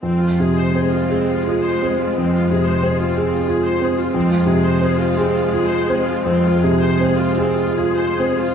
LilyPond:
<<
  \new Staff \with { instrumentName = "Viola section" } { \time 12/8 \key f \minor \tempo 4. = 56 << { c'16 f'16 aes'16 c''16 aes'16 f'16 c'16 f'16 aes'16 c''16 aes'16 f'16 c'16 f'16 aes'16 c''16 aes'16 f'16 c'16 f'16 aes'16 c''16 aes'16 f'16 | c'16 f'16 aes'16 c''16 aes'16 f'16 c'16 f'16 aes'16 c''16 aes'16 f'16 c'16 f'16 aes'16 c''16 aes'16 f'16 c'16 f'16 aes'16 c''16 aes'16 f'16 | } \\ { aes1. | aes1~ aes4. r8 | } >> }
  \new Staff \with { instrumentName = "Grand piano" } { \time 12/8 \key f \minor f,8 c8 c'8 aes'8 f'8 c'8 f,8 c8 c'8 aes'8 f'8 c'8 | f,8 c8 c'8 aes'8 f'8 c'8 f,8 c8 c'8 aes'8 f'8 c'8 | }
>>